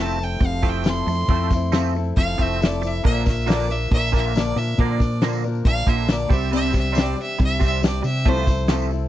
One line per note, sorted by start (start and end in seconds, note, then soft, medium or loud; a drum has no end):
0.00 0.36 F1 medium
0.00 0.17 F3 medium
0.00 0.18 F3 medium
0.00 0.18 A3 medium
0.00 0.18 C4 loud
0.00 0.19 C4 medium
0.00 0.18 E4 medium
0.00 0.17 A4 medium
0.00 0.25 A5 medium
0.08 tambourine medium
0.18 0.39 F3 medium
0.18 0.39 A3 medium
0.18 0.39 C4 soft
0.18 0.40 E4 soft
0.18 0.40 A4 medium
0.18 tambourine soft
0.23 0.47 G5 medium
0.39 1.02 F1 medium
0.39 0.62 F3 medium
0.39 0.60 F3 medium
0.39 0.60 A3 medium
0.39 0.62 C4 medium
0.39 0.63 E4 medium
0.39 0.61 A4 medium
0.39 kick medium
0.39 open hi-hat medium
0.39 tambourine soft
0.46 0.70 F5 medium
0.62 0.83 F3 medium
0.62 0.83 A3 loud
0.62 0.84 C4 loud
0.62 0.84 C4 soft
0.62 0.84 E4 medium
0.62 0.84 A4 soft
0.62 kick medium
0.62 tambourine medium
0.69 0.90 G5 medium
0.74 tambourine soft
0.84 1.06 F3 medium
0.84 1.04 F3 medium
0.84 1.05 A3 medium
0.84 1.06 C4 medium
0.84 1.07 E4 medium
0.84 1.06 A4 medium
0.84 snare loud
0.84 open hi-hat medium
0.84 tambourine medium
0.89 1.71 C6 medium
0.96 tambourine soft
1.06 1.27 F2 medium
1.06 1.26 F3 medium
1.06 1.27 A3 medium
1.06 1.28 C4 soft
1.06 1.29 E4 soft
1.06 1.29 A4 soft
1.06 tambourine medium
1.28 2.11 F2 medium
1.28 1.50 F3 medium
1.28 1.49 F3 medium
1.28 1.50 A3 medium
1.28 1.51 C4 medium
1.28 1.50 C4 medium
1.28 1.51 E4 medium
1.28 1.52 A4 medium
1.28 kick loud
1.28 open hi-hat medium
1.50 1.71 F3 medium
1.50 1.71 A3 medium
1.50 1.74 E4 medium
1.50 1.73 A4 medium
1.50 kick medium
1.50 snare soft
1.50 tambourine medium
1.56 1.73 C4 soft
1.72 1.93 F3 medium
1.72 1.95 F3 medium
1.72 1.93 A3 loud
1.72 1.93 C4 loud
1.72 1.95 C4 medium
1.72 1.95 E4 medium
1.72 1.95 A4 loud
1.72 snare loud
1.72 open hi-hat medium
1.72 tambourine medium
1.84 tambourine medium
1.96 2.15 F3 medium
1.96 2.15 A3 medium
1.96 2.16 C4 medium
1.96 2.17 E4 medium
1.96 2.17 A4 medium
1.96 tambourine soft
2.16 2.36 F1 medium
2.16 2.38 F3 medium
2.16 2.36 F3 medium
2.16 2.37 A3 medium
2.16 2.38 C4 medium
2.16 2.39 E4 medium
2.16 2.37 A4 medium
2.16 2.44 F5 loud
2.16 kick loud
2.16 open hi-hat medium
2.16 tambourine soft
2.38 3.00 F1 medium
2.38 2.58 F3 medium
2.38 2.58 A3 medium
2.38 2.59 C4 loud
2.38 2.60 C4 soft
2.38 2.61 E4 soft
2.38 2.60 A4 medium
2.38 kick medium
2.38 tambourine medium
2.42 2.66 E5 medium
2.51 tambourine soft
2.60 2.79 F3 medium
2.60 2.82 F3 medium
2.60 2.80 A3 medium
2.60 2.82 C4 medium
2.60 2.82 E4 medium
2.60 2.80 A4 medium
2.60 snare loud
2.60 open hi-hat medium
2.60 tambourine medium
2.65 2.88 D5 medium
2.73 tambourine soft
2.82 3.01 F3 medium
2.82 3.01 A3 medium
2.82 3.04 C4 soft
2.82 3.04 E4 soft
2.82 3.03 A4 medium
2.82 tambourine medium
2.87 3.05 E5 medium
3.03 3.87 A#1 medium
3.03 3.25 A#2 medium
3.03 3.24 A#2 medium
3.03 3.25 D3 medium
3.03 3.24 D3 medium
3.03 3.26 F3 medium
3.03 3.24 A#3 medium
3.03 3.26 A#3 medium
3.03 3.25 D4 medium
3.03 3.24 A#4 medium
3.03 3.25 E5 medium
3.03 kick loud
3.03 crash medium
3.26 3.45 A#2 medium
3.26 3.45 D3 medium
3.26 3.47 F3 soft
3.26 3.47 A#3 soft
3.26 3.48 D4 medium
3.26 3.47 A#4 medium
3.26 3.50 E5 medium
3.26 kick medium
3.26 snare soft
3.26 tambourine medium
3.46 3.67 A#2 loud
3.46 3.69 A#2 medium
3.46 3.69 D3 medium
3.46 3.68 D3 loud
3.46 3.69 F3 medium
3.46 3.68 A#3 loud
3.46 3.69 A#3 medium
3.46 3.68 D4 medium
3.46 3.67 A#4 medium
3.46 3.73 D5 medium
3.46 snare loud
3.46 open hi-hat medium
3.46 tambourine medium
3.60 tambourine medium
3.68 3.90 F3 soft
3.68 3.91 A#3 medium
3.68 3.91 D4 medium
3.68 3.90 A#4 medium
3.68 3.91 E5 medium
3.68 tambourine soft
3.91 4.52 A#1 loud
3.91 4.11 A#2 medium
3.91 4.11 D3 medium
3.91 4.13 F3 medium
3.91 4.13 A#3 medium
3.91 4.13 D4 medium
3.91 4.12 A#4 medium
3.91 4.13 E5 loud
3.91 kick loud
3.91 open hi-hat medium
3.91 tambourine soft
4.12 4.33 A#2 medium
4.12 4.33 D3 loud
4.12 4.33 A#3 loud
4.12 4.35 A#3 medium
4.12 4.35 D4 medium
4.12 4.35 A#4 medium
4.12 4.40 E5 medium
4.12 kick medium
4.12 tambourine medium
4.17 4.34 F3 soft
4.25 tambourine soft
4.34 4.54 A#2 medium
4.34 4.56 A#2 medium
4.34 4.54 D3 medium
4.34 4.57 D3 medium
4.34 4.57 F3 medium
4.34 4.57 A#3 medium
4.34 4.56 D4 medium
4.34 4.55 A#4 loud
4.34 snare loud
4.34 open hi-hat medium
4.34 tambourine medium
4.38 4.59 D5 loud
4.47 tambourine soft
4.56 4.76 A#2 medium
4.56 4.76 D3 medium
4.56 4.77 F3 soft
4.56 4.78 A#3 soft
4.56 4.78 D4 medium
4.56 4.78 A#4 soft
4.56 4.82 E5 medium
4.56 tambourine medium
4.78 5.00 A#2 medium
4.78 5.61 A#2 medium
4.78 5.00 A#2 medium
4.78 5.00 D3 medium
4.78 5.00 D3 loud
4.78 5.00 F3 medium
4.78 5.00 A#3 medium
4.78 4.99 D4 medium
4.78 4.98 A#4 medium
4.78 5.21 D5 medium
4.78 kick loud
4.78 open hi-hat medium
4.78 tambourine soft
4.99 5.20 A#2 medium
4.99 5.20 D3 medium
4.99 5.22 F3 soft
4.99 5.22 A#3 soft
4.99 5.22 D4 soft
4.99 5.21 A#4 medium
4.99 kick medium
4.99 snare soft
4.99 tambourine medium
5.11 tambourine soft
5.21 5.44 A#2 medium
5.21 5.43 A#2 medium
5.21 5.42 D3 loud
5.21 5.44 D3 medium
5.21 5.44 F3 medium
5.21 5.44 A#3 medium
5.21 5.43 A#3 loud
5.21 5.44 D4 medium
5.21 5.43 A#4 medium
5.21 snare loud
5.21 open hi-hat medium
5.21 tambourine medium
5.33 tambourine medium
5.44 5.64 A#2 medium
5.44 5.64 D3 medium
5.44 5.64 F3 medium
5.44 5.65 A#3 medium
5.44 5.66 D4 medium
5.44 5.66 A#4 medium
5.44 tambourine soft
5.55 tambourine soft
5.64 5.85 A#1 medium
5.64 5.86 A#2 medium
5.64 5.86 D3 medium
5.64 5.87 F3 medium
5.64 5.88 A#3 medium
5.64 5.88 D4 medium
5.64 5.90 F5 loud
5.64 kick loud
5.64 open hi-hat medium
5.64 tambourine soft
5.69 5.87 A#4 medium
5.77 tambourine soft
5.87 6.27 A#1 medium
5.87 6.07 A#2 medium
5.87 6.07 D3 loud
5.87 6.08 A#3 medium
5.87 6.10 A#3 soft
5.87 6.10 D4 soft
5.87 6.09 A#4 medium
5.87 6.14 E5 medium
5.87 kick medium
5.87 tambourine medium
5.91 6.11 F3 soft
5.98 tambourine soft
6.07 6.28 A#2 medium
6.07 6.31 A#2 medium
6.07 6.32 D3 medium
6.07 6.31 D4 medium
6.07 snare loud
6.07 open hi-hat medium
6.07 tambourine medium
6.12 6.32 F3 medium
6.12 6.32 A#3 medium
6.12 6.30 A#4 medium
6.12 6.34 D5 medium
6.20 tambourine soft
6.29 7.14 C2 medium
6.29 6.50 C3 medium
6.29 6.50 G3 medium
6.29 6.50 C4 medium
6.29 6.52 D4 soft
6.29 6.52 G4 medium
6.29 6.53 E5 medium
6.29 kick loud
6.29 tambourine medium
6.33 6.52 C4 soft
6.42 tambourine soft
6.51 6.71 C3 medium
6.51 6.74 C3 medium
6.51 6.71 G3 medium
6.51 6.74 G3 medium
6.51 6.72 C4 medium
6.51 6.75 C4 medium
6.51 6.74 D4 medium
6.51 6.72 G4 medium
6.51 6.75 E5 loud
6.51 crash medium
6.72 6.91 C3 medium
6.72 6.92 G3 medium
6.72 6.95 D4 soft
6.72 6.95 G4 medium
6.72 kick medium
6.72 snare soft
6.72 tambourine medium
6.77 6.95 C4 soft
6.77 7.03 E5 medium
6.92 7.15 C3 medium
6.92 7.17 C3 medium
6.92 7.15 G3 loud
6.92 7.18 G3 medium
6.92 7.15 C4 medium
6.92 7.17 C4 medium
6.92 7.16 D4 medium
6.92 7.15 G4 medium
6.92 tambourine loud
6.97 snare loud
6.97 open hi-hat medium
7.01 7.20 D5 medium
7.06 tambourine medium
7.16 7.37 C3 medium
7.16 7.37 G3 medium
7.16 7.38 C4 soft
7.16 7.38 D4 soft
7.16 7.39 G4 medium
7.16 tambourine soft
7.22 7.41 E5 medium
7.38 8.01 C2 medium
7.38 7.59 C3 medium
7.38 7.61 G3 medium
7.38 7.58 G3 medium
7.38 7.61 C4 medium
7.38 7.61 D4 medium
7.38 7.58 G4 medium
7.38 kick loud
7.38 open hi-hat medium
7.38 tambourine soft
7.44 7.63 E5 loud
7.59 7.80 C3 medium
7.59 7.80 G3 loud
7.59 7.81 C4 loud
7.59 7.82 C4 soft
7.59 7.82 D4 soft
7.59 7.82 G4 medium
7.59 kick medium
7.59 tambourine medium
7.65 7.85 E5 medium
7.71 tambourine soft
7.81 8.01 C3 medium
7.81 8.04 C3 medium
7.81 8.02 G3 medium
7.81 8.04 G3 medium
7.81 8.05 C4 medium
7.81 8.04 D4 medium
7.81 8.02 G4 medium
7.81 snare loud
7.81 open hi-hat medium
7.81 tambourine medium
7.85 8.05 D5 medium
7.94 tambourine soft
8.02 8.23 C3 medium
8.02 8.25 C3 medium
8.02 8.24 G3 medium
8.02 8.27 D4 soft
8.02 8.26 G4 medium
8.02 8.30 E5 medium
8.02 tambourine medium
8.07 8.26 C4 soft
8.25 9.08 C2 loud
8.25 8.48 C3 medium
8.25 8.47 C3 medium
8.25 8.47 F3 medium
8.25 8.48 F3 medium
8.25 8.47 A3 medium
8.25 8.49 C4 medium
8.25 8.48 E4 medium
8.25 8.47 A4 medium
8.25 8.70 C5 loud
8.25 kick loud
8.25 open hi-hat medium
8.47 8.67 C3 medium
8.47 8.67 F3 medium
8.47 8.69 C4 soft
8.47 8.70 E4 soft
8.47 8.70 A4 medium
8.47 kick medium
8.47 snare soft
8.47 tambourine medium
8.67 8.90 C3 medium
8.67 8.92 C3 medium
8.67 8.90 F3 loud
8.67 8.92 F3 medium
8.67 8.90 A3 loud
8.67 8.92 C4 medium
8.67 8.91 E4 medium
8.67 snare loud
8.67 open hi-hat medium
8.67 tambourine loud
8.71 8.89 A4 medium
8.80 tambourine medium
8.90 9.08 C3 medium
8.90 9.08 F3 medium
8.90 9.08 C4 medium
8.90 9.08 E4 medium
8.90 9.08 A4 medium
8.90 tambourine soft